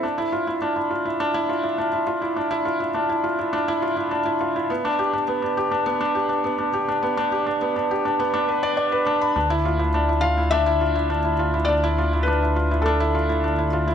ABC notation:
X:1
M:4/4
L:1/16
Q:1/4=103
K:Gmix
V:1 name="Felt piano"
z16 | z16 | z16 | z16 |
z6 f2 e8 | d4 B4 A6 z2 |]
V:2 name="Felt piano"
D E F E D E F E D E F E D E F E | D E F E D E F E D E F E D E F E | B, D G D B, D G D B, D G D B, D G D | B, D G D B, D G D B, D B d d B D b |
D E F E D E F E D E F E D E F E | D E F E D E F E D E F E D E F E |]
V:3 name="Detuned saw bass" clef=bass
z16 | z16 | z16 | z16 |
D,,16- | D,,16 |]